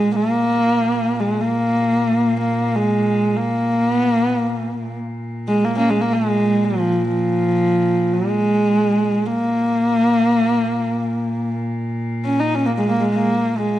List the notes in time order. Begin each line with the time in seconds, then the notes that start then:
Already playing: G#3
0.08 A#2
0.16 A#3
1.20 G#3
1.41 A#3
2.40 A#3
2.75 G#3
3.36 A#3
3.92 B3
4.08 A#3
4.24 B3
4.40 A#3
4.80 A#2
5.48 G#3
5.64 A#3
5.75 A#3 C#4
5.90 G#3
6.01 A#3
6.13 G#3
6.64 F3
7.09 F3
8.14 G#3
9.27 A#3
9.48 A#2
12.24 C#4
12.40 D#4
12.55 C#4
12.66 A#3
12.75 G#3 A#3
12.88 A#3
13.01 G#3
13.14 A#3
13.57 G#3